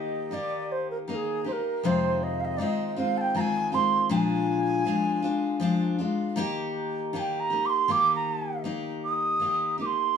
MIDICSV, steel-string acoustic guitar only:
0, 0, Header, 1, 2, 480
1, 0, Start_track
1, 0, Key_signature, -3, "major"
1, 0, Tempo, 757576
1, 1168, Time_signature, 3, 2, 24, 8
1, 6444, End_track
2, 0, Start_track
2, 0, Title_t, "Steel-string acoustic guitar"
2, 0, Program_c, 0, 25
2, 0, Note_on_c, 0, 51, 69
2, 0, Note_on_c, 0, 58, 70
2, 0, Note_on_c, 0, 63, 82
2, 0, Note_on_c, 0, 67, 81
2, 188, Note_off_c, 0, 51, 0
2, 195, Note_off_c, 0, 58, 0
2, 196, Note_on_c, 0, 51, 50
2, 203, Note_on_c, 0, 58, 53
2, 206, Note_off_c, 0, 63, 0
2, 208, Note_off_c, 0, 67, 0
2, 208, Note_on_c, 0, 63, 58
2, 215, Note_on_c, 0, 67, 63
2, 674, Note_off_c, 0, 51, 0
2, 682, Note_off_c, 0, 58, 0
2, 682, Note_on_c, 0, 51, 52
2, 688, Note_off_c, 0, 63, 0
2, 690, Note_on_c, 0, 58, 56
2, 691, Note_off_c, 0, 67, 0
2, 695, Note_on_c, 0, 63, 55
2, 915, Note_on_c, 0, 67, 43
2, 918, Note_off_c, 0, 63, 0
2, 925, Note_off_c, 0, 51, 0
2, 926, Note_on_c, 0, 63, 37
2, 928, Note_off_c, 0, 58, 0
2, 935, Note_on_c, 0, 58, 34
2, 1161, Note_off_c, 0, 67, 0
2, 1162, Note_on_c, 0, 41, 69
2, 1167, Note_off_c, 0, 63, 0
2, 1168, Note_on_c, 0, 48, 72
2, 1169, Note_off_c, 0, 58, 0
2, 1171, Note_on_c, 0, 56, 77
2, 1172, Note_on_c, 0, 51, 75
2, 1174, Note_on_c, 0, 60, 71
2, 1178, Note_on_c, 0, 65, 73
2, 1629, Note_off_c, 0, 51, 0
2, 1637, Note_on_c, 0, 51, 55
2, 1642, Note_off_c, 0, 56, 0
2, 1644, Note_off_c, 0, 60, 0
2, 1644, Note_on_c, 0, 56, 59
2, 1645, Note_off_c, 0, 41, 0
2, 1648, Note_off_c, 0, 48, 0
2, 1651, Note_on_c, 0, 60, 66
2, 1653, Note_off_c, 0, 65, 0
2, 1656, Note_on_c, 0, 65, 63
2, 1871, Note_off_c, 0, 65, 0
2, 1876, Note_off_c, 0, 60, 0
2, 1878, Note_on_c, 0, 65, 52
2, 1882, Note_off_c, 0, 51, 0
2, 1883, Note_off_c, 0, 56, 0
2, 1884, Note_on_c, 0, 60, 47
2, 1891, Note_on_c, 0, 56, 42
2, 1897, Note_on_c, 0, 51, 38
2, 2112, Note_off_c, 0, 51, 0
2, 2118, Note_off_c, 0, 56, 0
2, 2120, Note_on_c, 0, 51, 62
2, 2123, Note_off_c, 0, 65, 0
2, 2126, Note_off_c, 0, 60, 0
2, 2126, Note_on_c, 0, 56, 54
2, 2133, Note_on_c, 0, 60, 67
2, 2139, Note_on_c, 0, 65, 67
2, 2348, Note_off_c, 0, 65, 0
2, 2354, Note_off_c, 0, 60, 0
2, 2356, Note_on_c, 0, 65, 46
2, 2361, Note_off_c, 0, 56, 0
2, 2362, Note_on_c, 0, 60, 43
2, 2364, Note_off_c, 0, 51, 0
2, 2369, Note_on_c, 0, 56, 37
2, 2376, Note_on_c, 0, 51, 37
2, 2594, Note_on_c, 0, 46, 78
2, 2595, Note_off_c, 0, 51, 0
2, 2595, Note_off_c, 0, 56, 0
2, 2598, Note_on_c, 0, 53, 69
2, 2599, Note_off_c, 0, 65, 0
2, 2601, Note_off_c, 0, 60, 0
2, 2602, Note_on_c, 0, 56, 79
2, 2603, Note_on_c, 0, 62, 76
2, 2607, Note_on_c, 0, 65, 78
2, 3067, Note_off_c, 0, 53, 0
2, 3074, Note_off_c, 0, 56, 0
2, 3075, Note_on_c, 0, 53, 53
2, 3080, Note_off_c, 0, 62, 0
2, 3081, Note_off_c, 0, 46, 0
2, 3082, Note_on_c, 0, 56, 65
2, 3086, Note_off_c, 0, 65, 0
2, 3088, Note_on_c, 0, 62, 67
2, 3093, Note_on_c, 0, 65, 67
2, 3302, Note_off_c, 0, 65, 0
2, 3310, Note_on_c, 0, 65, 59
2, 3313, Note_off_c, 0, 62, 0
2, 3320, Note_on_c, 0, 62, 54
2, 3321, Note_off_c, 0, 53, 0
2, 3321, Note_off_c, 0, 56, 0
2, 3329, Note_on_c, 0, 56, 47
2, 3546, Note_off_c, 0, 56, 0
2, 3546, Note_on_c, 0, 53, 67
2, 3554, Note_on_c, 0, 56, 73
2, 3555, Note_off_c, 0, 62, 0
2, 3559, Note_off_c, 0, 65, 0
2, 3563, Note_on_c, 0, 62, 81
2, 3567, Note_on_c, 0, 65, 71
2, 3785, Note_off_c, 0, 65, 0
2, 3793, Note_on_c, 0, 65, 50
2, 3794, Note_off_c, 0, 62, 0
2, 3797, Note_off_c, 0, 53, 0
2, 3801, Note_off_c, 0, 56, 0
2, 3801, Note_on_c, 0, 62, 41
2, 3808, Note_on_c, 0, 56, 47
2, 4028, Note_on_c, 0, 51, 87
2, 4031, Note_off_c, 0, 56, 0
2, 4034, Note_on_c, 0, 58, 81
2, 4035, Note_off_c, 0, 62, 0
2, 4037, Note_on_c, 0, 63, 101
2, 4040, Note_off_c, 0, 65, 0
2, 4044, Note_on_c, 0, 67, 107
2, 4510, Note_off_c, 0, 51, 0
2, 4517, Note_off_c, 0, 58, 0
2, 4518, Note_on_c, 0, 51, 59
2, 4523, Note_off_c, 0, 63, 0
2, 4524, Note_on_c, 0, 58, 65
2, 4526, Note_off_c, 0, 67, 0
2, 4532, Note_on_c, 0, 63, 64
2, 4537, Note_on_c, 0, 67, 75
2, 4745, Note_off_c, 0, 67, 0
2, 4753, Note_on_c, 0, 67, 49
2, 4755, Note_off_c, 0, 63, 0
2, 4763, Note_off_c, 0, 51, 0
2, 4763, Note_off_c, 0, 58, 0
2, 4763, Note_on_c, 0, 63, 49
2, 4771, Note_on_c, 0, 58, 43
2, 4993, Note_off_c, 0, 58, 0
2, 4993, Note_on_c, 0, 51, 68
2, 4999, Note_off_c, 0, 63, 0
2, 5000, Note_on_c, 0, 58, 68
2, 5001, Note_off_c, 0, 67, 0
2, 5007, Note_on_c, 0, 63, 70
2, 5012, Note_on_c, 0, 67, 71
2, 5466, Note_off_c, 0, 51, 0
2, 5474, Note_off_c, 0, 58, 0
2, 5474, Note_on_c, 0, 51, 49
2, 5477, Note_off_c, 0, 63, 0
2, 5480, Note_off_c, 0, 67, 0
2, 5481, Note_on_c, 0, 58, 64
2, 5485, Note_on_c, 0, 63, 65
2, 5487, Note_on_c, 0, 67, 62
2, 5947, Note_off_c, 0, 51, 0
2, 5954, Note_off_c, 0, 58, 0
2, 5954, Note_on_c, 0, 51, 43
2, 5962, Note_on_c, 0, 58, 51
2, 5965, Note_off_c, 0, 63, 0
2, 5967, Note_off_c, 0, 67, 0
2, 5967, Note_on_c, 0, 63, 49
2, 5975, Note_on_c, 0, 67, 47
2, 6187, Note_off_c, 0, 67, 0
2, 6195, Note_on_c, 0, 67, 37
2, 6199, Note_off_c, 0, 63, 0
2, 6203, Note_off_c, 0, 51, 0
2, 6207, Note_off_c, 0, 58, 0
2, 6207, Note_on_c, 0, 63, 36
2, 6216, Note_on_c, 0, 58, 33
2, 6434, Note_off_c, 0, 58, 0
2, 6443, Note_off_c, 0, 63, 0
2, 6444, Note_off_c, 0, 67, 0
2, 6444, End_track
0, 0, End_of_file